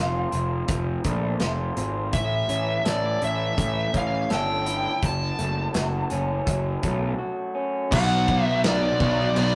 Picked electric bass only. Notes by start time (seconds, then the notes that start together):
Already playing: F1
0.33 F1
0.69 F1
1.05 A#1
1.41 F1
1.77 G#1
2.13 A1
2.49 A1
2.86 A1
3.22 A1
3.58 A1
3.95 A1
4.30 G1
5.03 F#1
5.39 F#1
5.75 F#1
6.12 F#1
6.47 F#1
6.84 B1
7.93 B1
8.65 B1
9.01 B1
9.37 B1